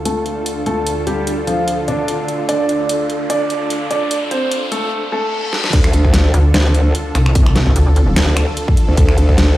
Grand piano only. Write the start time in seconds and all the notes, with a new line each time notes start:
0.05 A3 A4
0.66 A3 A4
1.07 G3 G4
1.47 F3 F4
1.88 D3 D4
2.49 D4 D5
3.30 D4 D5
3.91 D4 D5
4.31 C4 C5
4.72 A3 A4
5.12 A3 A4